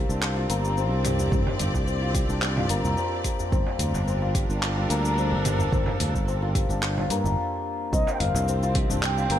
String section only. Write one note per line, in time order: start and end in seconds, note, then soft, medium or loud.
0.00 5.10 C4 medium
0.00 4.62 G4 medium
0.00 0.89 A4 medium
0.00 0.89 A#4 medium
0.00 5.29 D5 medium
3.52 7.37 G3 medium
3.80 7.37 D4 medium
3.80 7.38 A#4 medium
4.57 7.37 A4 medium
7.92 9.39 C4 medium
8.09 9.39 G4 medium
8.53 9.39 C5 medium